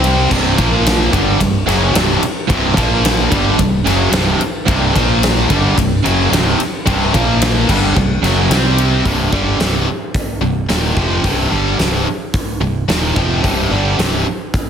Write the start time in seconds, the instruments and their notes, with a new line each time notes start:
Already playing: fingered electric bass C2, distorted electric guitar C3 G3 C4
0.04 ride
0.31 fingered electric bass C1, distorted electric guitar C2 G2 C3, kick, crash
0.58 fingered electric bass A#1, distorted electric guitar A#2 F3 A#3, kick, ride
0.86 snare, ride
1.13 fingered electric bass G1, distorted electric guitar G2 D3 G3, kick, ride
1.40 fingered electric bass C1, distorted electric guitar C2 G2, kick, ride
1.67 fingered electric bass F#1, distorted electric guitar F#2 C#3 F#3, snare, ride
1.94 fingered electric bass C1, distorted electric guitar C2 G2 C3, snare, ride
2.21 muted distorted electric guitar stroke, muted fingered electric bass stroke, ride
2.49 fingered electric bass C1, distorted electric guitar C2 G2 C3, kick, ride
2.77 fingered electric bass A#1, distorted electric guitar A#2 F3 A#3, kick, ride
3.05 snare, ride
3.31 fingered electric bass G1, distorted electric guitar G2 D3 G3, kick, ride
3.59 fingered electric bass C1, distorted electric guitar C2 G2, kick, ride
3.85 fingered electric bass F#1, distorted electric guitar F#2 C#3 F#3, snare, ride
4.12 fingered electric bass C1, distorted electric guitar C2 G2 C3, snare, ride
4.39 muted fingered electric bass stroke, muted distorted electric guitar stroke, ride
4.68 fingered electric bass C1, distorted electric guitar C2 G2 C3, kick, ride
4.95 fingered electric bass A#1, distorted electric guitar A#2 F3 A#3, kick, ride
5.23 snare, ride
5.50 fingered electric bass G1, distorted electric guitar G2 D3 G3, kick, ride
5.78 fingered electric bass C1, distorted electric guitar C2 G2, kick, ride
6.05 fingered electric bass F#1, distorted electric guitar F#2 C#3 F#3, ride
6.31 fingered electric bass C1, distorted electric guitar C2 G2 C3, snare, ride
6.60 muted distorted electric guitar stroke, ride
6.86 fingered electric bass C1, distorted electric guitar C2 G2 C3, kick, ride
7.14 fingered electric bass A#1, distorted electric guitar A#2 F3 A#3, kick, ride
7.42 snare, ride
7.68 fingered electric bass G1, distorted electric guitar G2 D3 G3, kick, crash
7.96 fingered electric bass C1, distorted electric guitar C2 G2, kick
8.22 fingered electric bass F#1, distorted electric guitar F#2 C#3 F#3, snare, ride
8.49 fingered electric bass C2, distorted electric guitar C3 G3 C4, snare, ride
8.78 ride
9.05 fingered electric bass C1, distorted electric guitar C2 G2 C3, kick, open hi-hat
9.32 fingered electric bass G1, distorted electric guitar G2 D3 G3, kick
9.59 fingered electric bass C1, distorted electric guitar C2 G2 C3, snare, open hi-hat
10.14 kick, open hi-hat
10.41 fingered electric bass C1, distorted electric guitar C2 G2
10.69 fingered electric bass D#1, distorted electric guitar D#2 A#2 D#3, snare, open hi-hat
10.96 fingered electric bass F1, distorted electric guitar F2 C3 F3, kick
11.23 fingered electric bass C1, distorted electric guitar C2 G2 C3, kick, open hi-hat
11.51 fingered electric bass G1, distorted electric guitar G2 D3 G3
11.78 fingered electric bass C1, distorted electric guitar C2 G2 C3, snare, open hi-hat
12.34 kick, open hi-hat
12.60 fingered electric bass C1, distorted electric guitar C2 G2
12.88 fingered electric bass D#1, distorted electric guitar D#2 A#2 D#3, snare, open hi-hat
13.16 fingered electric bass F1, distorted electric guitar F2 C3 F3, kick
13.43 fingered electric bass C1, distorted electric guitar C2 G2 C3, kick, open hi-hat
13.70 fingered electric bass G1, distorted electric guitar G2 D3 G3
13.98 fingered electric bass C1, distorted electric guitar C2 G2 C3, snare, open hi-hat
14.54 kick, open hi-hat